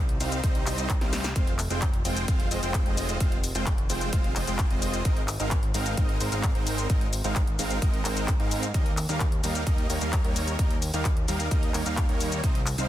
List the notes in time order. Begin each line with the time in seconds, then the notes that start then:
Already playing: C2
0.09 closed hi-hat
0.20 C2 G3 C4 D#4 C5 F5, open hi-hat, shaker
0.32 closed hi-hat, shaker
0.43 C2 G3 C4 D#4 C5 D#5, kick, closed hi-hat, shaker
0.55 closed hi-hat
0.66 C2 G3 C4 D#4 C5 D#5, clap, open hi-hat, shaker
0.78 closed hi-hat, shaker
0.89 kick, clap, closed hi-hat, shaker
1.01 C2 G3 C4 D#4 C5 F5, snare, closed hi-hat
1.13 snare, open hi-hat, shaker
1.24 snare, closed hi-hat, shaker
1.36 F1 G#3 C4 F4 C5 F5, kick, closed hi-hat, shaker
1.47 closed hi-hat
1.59 clap, open hi-hat, shaker
1.70 F1 G#3 C4 F4 C5 G5, closed hi-hat, shaker
1.82 kick, clap, closed hi-hat, shaker
1.94 closed hi-hat
2.05 F1 G#3 C4 F4 C5 G5, open hi-hat, shaker
2.17 closed hi-hat, shaker
2.28 F1 G#3 C4 F4 C5 F5, kick, closed hi-hat, shaker
2.40 closed hi-hat
2.51 F1 G#3 C4 F4 C5 D#5, open hi-hat, shaker
2.63 F1 G#3 C4 F4 C5 G5, closed hi-hat, shaker
2.74 kick, clap, closed hi-hat, shaker
2.86 F1 G#3 C4 F4 C5 D#5, closed hi-hat
2.97 open hi-hat, shaker
3.09 closed hi-hat, shaker
3.20 F1 G#3 C4 F4 C5 F5, kick, closed hi-hat, shaker
3.32 closed hi-hat
3.44 open hi-hat, shaker
3.55 F1 G#3 C4 F4 C5 G5, closed hi-hat, shaker
3.66 kick, clap, closed hi-hat, shaker
3.78 closed hi-hat
3.90 F1 G#3 C4 F4 C5 G5, open hi-hat, shaker
4.01 closed hi-hat, shaker
4.13 F1 G#3 C4 F4 C5 F5, kick, closed hi-hat, shaker
4.24 closed hi-hat
4.36 F1 G#3 C4 F4 C5 D#5, clap, open hi-hat, shaker
4.47 F1 G#3 C4 F4 C5 G5, closed hi-hat, shaker
4.59 kick, clap, closed hi-hat, shaker
4.70 F1 G#3 C4 F4 C5 D#5, closed hi-hat
4.82 open hi-hat, shaker
4.94 closed hi-hat, shaker
5.05 G#1 G#3 C4 D#4 A#4 D#5, kick, closed hi-hat, shaker
5.17 closed hi-hat
5.28 clap, open hi-hat, shaker
5.40 G#1 G#3 C4 D#4 A#4 F5, closed hi-hat, shaker
5.51 kick, clap, closed hi-hat, shaker
5.63 closed hi-hat
5.74 G#1 G#3 C4 D#4 A#4 F5, open hi-hat, shaker
5.86 closed hi-hat, shaker
5.97 G#1 G#3 C4 D#4 A#4 D#5, kick, closed hi-hat, shaker
6.09 closed hi-hat
6.20 G#1 G#3 C4 D#4 A#4 C5, open hi-hat, shaker
6.32 G#1 G#3 C4 D#4 A#4 F5, closed hi-hat, shaker
6.43 kick, clap, closed hi-hat, shaker
6.55 G#1 G#3 C4 D#4 A#4 C5, closed hi-hat
6.67 open hi-hat, shaker
6.78 closed hi-hat, shaker
6.90 G#1 G#3 C4 D#4 A#4 D#5, kick, closed hi-hat, shaker
7.01 closed hi-hat
7.13 open hi-hat, shaker
7.24 G#1 G#3 C4 D#4 A#4 F5, closed hi-hat, shaker
7.36 kick, clap, closed hi-hat, shaker
7.47 closed hi-hat
7.59 G#1 G#3 C4 D#4 A#4 F5, open hi-hat, shaker
7.70 closed hi-hat, shaker
7.82 G#1 G#3 C4 D#4 A#4 D#5, kick, closed hi-hat, shaker
7.94 closed hi-hat
8.05 G#1 G#3 C4 D#4 A#4 C5, clap, open hi-hat, shaker
8.17 closed hi-hat, shaker
8.28 kick, clap, closed hi-hat, shaker
8.40 G#2 G#3 C4 D#4 A#4 F5, closed hi-hat
8.51 open hi-hat, shaker
8.63 closed hi-hat, shaker
8.74 D#2 G3 A#3 D#4 A#4 D#5, kick, closed hi-hat, shaker
8.86 closed hi-hat
8.97 clap, open hi-hat, shaker
9.09 D#2 G3 A#3 D#4 A#4 F5, closed hi-hat, shaker
9.20 kick, clap, closed hi-hat, shaker
9.32 closed hi-hat
9.44 D#2 G3 A#3 D#4 A#4 F5, open hi-hat, shaker
9.55 closed hi-hat, shaker
9.67 D#2 G3 A#3 D#4 A#4 D#5, kick, closed hi-hat, shaker
9.78 closed hi-hat
9.90 D#2 G3 A#3 D#4 A#4 C#5, open hi-hat, shaker
10.01 D#2 G3 A#3 D#4 A#4 F5, closed hi-hat, shaker
10.13 kick, clap, closed hi-hat, shaker
10.24 D#2 G3 A#3 D#4 A#4 C#5, closed hi-hat
10.36 open hi-hat, shaker
10.48 closed hi-hat, shaker
10.59 D#2 G3 A#3 D#4 A#4 D#5, kick, closed hi-hat, shaker
10.71 closed hi-hat
10.82 open hi-hat, shaker
10.94 D#2 G3 A#3 D#4 A#4 F5, closed hi-hat, shaker
11.05 kick, clap, closed hi-hat, shaker
11.17 closed hi-hat
11.28 D#2 G3 A#3 D#4 A#4 F5, open hi-hat, shaker
11.40 closed hi-hat, shaker
11.51 D#2 G3 A#3 D#4 A#4 D#5, kick, closed hi-hat, shaker
11.63 closed hi-hat
11.74 D#2 G3 A#3 D#4 A#4 C#5, clap, open hi-hat, shaker
11.86 D#2 G3 A#3 D#4 A#4 F5, closed hi-hat, shaker
11.97 kick, clap, closed hi-hat, shaker
12.09 D#2 G3 A#3 D#4 A#4 C#5, closed hi-hat
12.21 open hi-hat, shaker
12.32 closed hi-hat, shaker
12.44 C2 G3 C4 D#4 C5 D#5, kick, closed hi-hat, shaker
12.55 closed hi-hat
12.66 clap, open hi-hat, shaker
12.78 C2 G3 C4 D#4 C5 F5, closed hi-hat, shaker